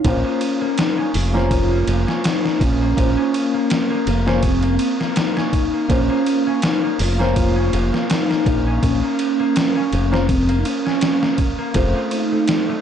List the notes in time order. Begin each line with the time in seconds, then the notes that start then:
Already playing: D#4
0.04 A#1 A#3 C#4 F4 C5 F5, kick, ride
0.09 C#4
0.24 A#3
0.41 ride
0.61 A#3
0.78 D#4, snare, ride
0.98 C#4
1.14 F1 F4, open hi-hat
1.33 A#3 C#4 F4 C5, snare
1.51 kick, ride
1.71 A#3
1.87 F1, ride
2.07 C#4, snare
2.24 D#4, snare, ride
2.44 A#3, snare
2.61 A#1 C#4, kick, ride
2.81 A#3
2.97 A#1 A#3 C#4 F4 C5, kick, ride
3.17 C#4
3.34 ride
3.54 A#3
3.70 snare, ride
3.90 A#3
4.07 F1 A#3, ride
4.26 A#3 C#4 F4 C5, snare
4.43 C4, kick, ride
4.63 A#3, ride
4.79 ride
5.00 A#3, snare
5.16 D#4, snare, ride
5.36 C#4, snare
5.53 kick, ride
5.73 A#3
5.88 A#1 A#3 C#4 F4 C5, kick, ride
5.93 C#4
6.10 A#3
6.26 ride
6.46 C#4
6.62 D#4, snare, ride
6.83 A#3
6.99 F1 F4, open hi-hat
7.18 A#3 C#4 F4 C5, snare
7.36 kick, ride
7.56 C#4
7.73 F1, ride
7.93 A#3, snare
8.10 D#4, snare, ride
8.29 A#3, snare
8.46 A#1, kick, ride
8.67 C#4
8.83 A#1 C#4, kick, ride
9.03 A#3
9.19 ride
9.39 A#3
9.56 snare, ride
9.76 C#4
9.93 F1, ride
10.11 A#3 C#4 F4 C5, snare
10.29 C4, kick, ride
10.49 A#3, ride
10.59 D#4
10.65 C#4, ride
10.85 C#4, snare
11.01 snare, ride
11.22 A#3, snare
11.38 kick, ride
11.58 A#3
11.73 F1 A3 C4 F4, kick, ride
11.77 C5
11.95 C4
12.11 D#4, ride
12.31 A3
12.48 snare, ride
12.69 A3